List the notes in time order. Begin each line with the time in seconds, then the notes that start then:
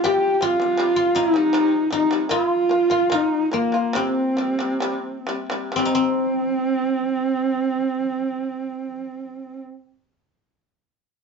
Already playing: D#4 F4
0.04 C3 G3 G4
0.34 G4
0.41 C3 G3 F4
0.60 C3 G3
0.77 C3 G3
0.96 F4
1.15 C3 G3 D#4
1.19 D#4
1.34 C3 G3
1.53 C3 G3
1.91 C3 G3 D#4
1.95 D#4
2.11 C3 G3
2.29 A#3 E4 F4
2.34 F4
2.49 F4
2.69 A#3 F4
2.90 A#3 F4
3.10 A#3 D#4 F4
3.14 D#4
3.52 A#3 F4
3.72 A#3 F4
3.93 C3 G3 C4
4.37 C3 G3
4.59 C3 G3
4.80 C3 G3
5.27 C3 G3
5.50 C3 G3
5.72 C3
5.76 G3 C4
5.85 D#4
5.95 C4